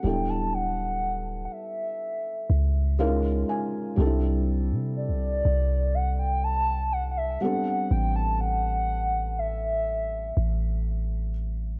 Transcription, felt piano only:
\new Staff \with { instrumentName = "Felt piano" } { \time 4/4 \key a \dorian \tempo 4 = 61 << { r2. eis''8 gis''8 | r1 | r1 | } \\ { <g b d' e' a'>2. <gis cis' dis' e' eis' ais'>4 | <g c' d' ees' e' a'>2.~ <g c' d' ees' e' a'>8 <g b c' d' a'>8~ | <g b c' d' a'>2.~ <g b c' d' a'>8 r8 | } >> }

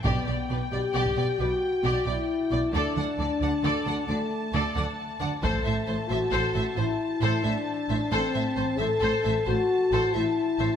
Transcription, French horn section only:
\new Staff \with { instrumentName = "French horn section" } { \time 12/8 \key a \dorian \tempo 4. = 89 b4. g'4. fis'4. e'4. | d'2. a2~ a8 r8 | a4. fis'4. e'4. d'4. | c'4. a'4. fis'4. e'4. | }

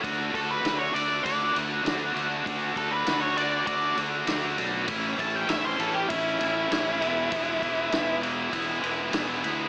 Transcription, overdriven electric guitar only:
\new Staff \with { instrumentName = "Overdriven electric guitar" } { \time 4/4 \key d \lydian \tempo 4 = 99 <d a d' fis'>8 <d a d' fis'>8 <d a d' fis'>8 <d a d' fis'>8 <d a d' fis'>8 <d a d' fis'>8 <d a d' fis'>8 <d a d' fis'>8 | <d a d' fis'>8 <d a d' fis'>8 <d a d' fis'>8 <d a d' fis'>8 <d a d' fis'>8 <d a d' fis'>8 <d a d' fis'>8 <d a d' fis'>8 | <a, e a cis' e'>8 <a, e a cis' e'>8 <a, e a cis' e'>8 <a, e a cis' e'>8 <a, e a cis' e'>8 <a, e a cis' e'>8 <a, e a cis' e'>8 <e gis b e'>8 | <e gis b e'>8 <e gis b e'>8 <e gis b e'>8 <e gis b e'>8 <e gis b e'>8 <e gis b e'>8 <e gis b e'>8 <e gis b e'>8 | }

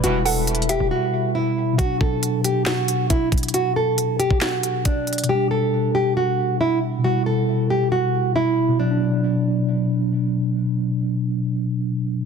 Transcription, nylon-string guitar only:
\new Staff \with { instrumentName = "Nylon-string guitar" } { \time 4/4 \key b \minor \tempo 4 = 137 fis'8 a'4 g'8 fis'4 e'4 | fis'8 a'4 g'8 fis'4 e'8 r8 | fis'8 a'4 g'8 fis'4 d'4 | g'8 a'4 g'8 fis'4 e'8 r8 |
fis'8 a'4 g'8 fis'4 e'4 | d'2. r4 | r1 | }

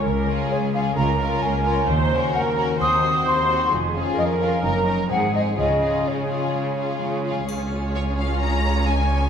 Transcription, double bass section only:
\new Staff \with { instrumentName = "Double bass section" } { \clef bass \time 4/4 \key des \major \tempo 4 = 130 des,4 r4 des,4 r4 | ees,4 r4 ees,4 r4 | f,,4 r4 ges,,4 aes,,4 | des,4 r2. |
des,1 | }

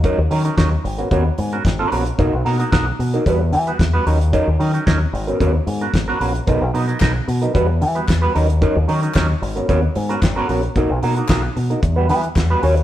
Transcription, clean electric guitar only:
\new Staff \with { instrumentName = "Clean electric guitar" } { \time 4/4 \key gis \minor \tempo 4 = 112 <fis cis' dis' ais'>16 r16 <fis cis' dis' ais'>16 <fis cis' dis' ais'>16 <fis cis' dis' ais'>16 r8 <b cis' fis' ais'>16 <b cis' fis' ais'>16 r8 <b cis' fis' ais'>16 r16 <b cis' fis' ais'>16 <b cis' fis' ais'>16 r16 | <ais dis' fis' ais'>16 r16 <ais dis' fis' ais'>16 <ais dis' fis' ais'>16 <ais dis' fis' ais'>16 r8 <ais dis' fis' ais'>16 <g b fis' b'>16 r8 <g b fis' b'>16 r16 <g b fis' b'>16 <fis cis' dis' ais'>16 r16 | <fis cis' dis' ais'>16 r16 <fis cis' dis' ais'>16 <fis cis' dis' ais'>16 <fis cis' dis' ais'>16 r8 <b cis' fis' ais'>16 <b cis' fis' ais'>16 r8 <b cis' fis' ais'>16 r16 <b cis' fis' ais'>16 <b cis' fis' ais'>16 r16 | <fis b dis' ais'>16 r16 <fis b dis' ais'>16 <fis b dis' ais'>16 <fis b dis' ais'>16 r8 <fis b dis' ais'>16 <g b fis' b'>16 r8 <g b fis' b'>16 r16 <g b fis' b'>16 <fis cis' dis' ais'>16 r16 |
<fis cis' dis' ais'>16 r16 <fis cis' dis' ais'>16 <fis cis' dis' ais'>16 <fis cis' dis' ais'>16 r8 <b cis' fis' ais'>16 <b cis' fis' ais'>16 r8 <b cis' fis' ais'>16 r16 <b cis' fis' ais'>16 <b cis' fis' ais'>16 r16 | <ais dis' fis' ais'>16 r16 <ais dis' fis' ais'>16 <ais dis' fis' ais'>16 <ais dis' fis' ais'>16 r8 <ais dis' fis' ais'>16 r16 <g b fis' b'>16 <g b fis' b'>16 r8 <g b fis' b'>16 <cis' fis' ais' cis''>16 r16 | }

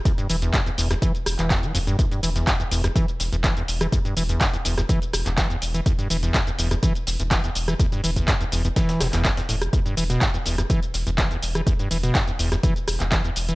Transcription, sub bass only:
\new Staff \with { instrumentName = "Sub bass" } { \clef bass \time 4/4 \key e \minor \tempo 4 = 124 r8 e,,8 r8 e,,8 r8 e,,16 e,,8 r16 e,,8 | r8 e,,8 r8 e,,8 r8 e,,16 e,,8 r16 e,,8 | r8 e,,8 r8 e,,8 r8 e,,16 e,,8 r16 e,,8 | r8 e,,8 r8 e,,8 r8 e,,16 e,,8 r16 e,,8 |
r8 e,,8 r8 e,,8 r8 e,,16 e,,8 r16 e,,8 | r8 e,,8 r8 e,,8 r8 e,,16 e,,8 r16 e,,8 | r8 e,,8 r8 e,,8 r8 e,,16 e,,8 r16 e,,8 | }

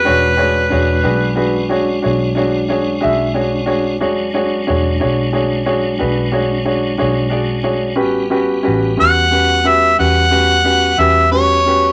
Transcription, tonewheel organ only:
\new Staff \with { instrumentName = "Tonewheel organ" } { \time 12/8 \key e \mixolydian \tempo 4. = 60 <gis cis' d' fis'>1. | <fis gis cis' d'>1. | <g b cis' fis'>1. | }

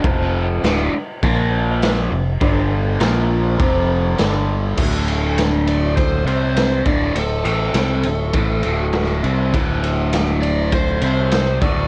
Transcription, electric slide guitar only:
\new Staff \with { instrumentName = "Electric slide guitar" } { \time 4/4 \key d \minor \tempo 4 = 101 r1 | r1 | r4. d''8 c''8 c''4 d''8 | a'8 a'2. r8 |
r4. d''8 c''8 c''4 d''8 | }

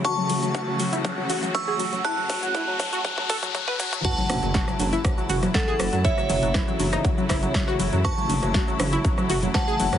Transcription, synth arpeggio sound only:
\new Staff \with { instrumentName = "Synth arpeggio sound" } { \clef bass \time 4/4 \key fis \minor \tempo 4 = 120 fis'16 fis16 fis16 fis16 fis'16 fis16 fis16 e'16 fis16 fis16 fis'16 fis16 fis16 gis'16 fis16 fis16 | e'16 fis16 fis16 fis16 e'16 fis16 fis16 fis'16 fis16 fis16 a'16 fis16 fis16 b'16 fis16 fis16 | fis'16 fis16 fis16 fis16 fis'16 fis16 fis16 e'16 fis16 fis16 fis'16 fis16 fis16 gis'16 fis16 fis16 | e'16 fis16 fis16 fis16 e'16 fis16 fis16 dis'16 fis16 fis16 e'16 fis16 fis16 fis'16 fis16 fis16 |
fis'16 fis16 fis16 fis16 fis'16 fis16 fis16 e'16 fis16 fis16 fis'16 fis16 fis16 gis'16 fis16 fis16 | }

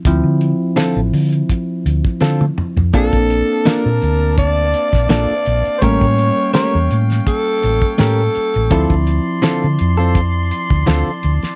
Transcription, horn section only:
\new Staff \with { instrumentName = "Horn section" } { \time 4/4 \key d \minor \tempo 4 = 83 << { r1 | <d'' a''>1 | <cis'' g''>1 | <d'' a''>1 | } \\ { r1 | f''1~ | f''1 | c'''1 | } >> }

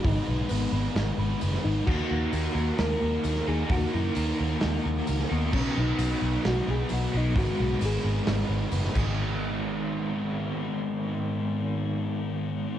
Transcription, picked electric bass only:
\new Staff \with { instrumentName = "Picked electric bass" } { \clef bass \time 4/4 \key gis \minor \tempo 4 = 131 gis,,8 b,,8 gis,,8 gis,,8 gis,,8 gis,,8 fis,,8 gis,,8 | dis,8 dis,8 dis,8 dis,8 dis,8 dis,8 dis,8 dis,8 | dis,8 fis,8 dis,8 dis,8 dis,8 dis,8 cis,8 dis,8 | b,,8 b,,8 b,,8 b,,8 b,,8 b,,8 b,,8 b,,8 |
gis,,8 b,,8 gis,,8 gis,,8 gis,,8 gis,,8 fis,,8 gis,,8~ | gis,,1~ | gis,,1 | }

